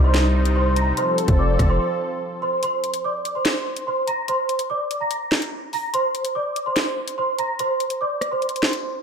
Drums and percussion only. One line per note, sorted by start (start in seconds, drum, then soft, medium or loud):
0.14 snare loud
0.14 clap medium
0.14 closed hi-hat medium
0.45 closed hi-hat medium
0.76 closed hi-hat medium
0.97 closed hi-hat medium
1.18 closed hi-hat medium
1.28 kick loud
1.28 closed hi-hat medium
1.59 kick medium
1.59 cross-stick loud
1.59 closed hi-hat medium
2.63 closed hi-hat medium
2.84 closed hi-hat medium
2.94 closed hi-hat medium
3.25 closed hi-hat medium
3.45 snare loud
3.45 clap medium
3.45 closed hi-hat medium
3.77 closed hi-hat medium
4.08 closed hi-hat medium
4.28 closed hi-hat medium
4.49 closed hi-hat medium
4.59 closed hi-hat medium
4.91 closed hi-hat medium
5.11 closed hi-hat medium
5.32 snare loud
5.32 clap loud
5.42 closed hi-hat medium
5.73 open hi-hat medium
5.94 closed hi-hat medium
6.15 closed hi-hat medium
6.25 closed hi-hat medium
6.56 closed hi-hat medium
6.76 snare loud
6.76 clap medium
6.76 closed hi-hat medium
7.08 closed hi-hat medium
7.39 closed hi-hat medium
7.59 closed hi-hat medium
7.80 closed hi-hat medium
7.90 closed hi-hat medium
8.21 cross-stick medium
8.21 closed hi-hat medium
8.42 closed hi-hat soft
8.49 closed hi-hat medium
8.56 closed hi-hat medium
8.63 snare loud
8.63 clap loud
8.73 closed hi-hat medium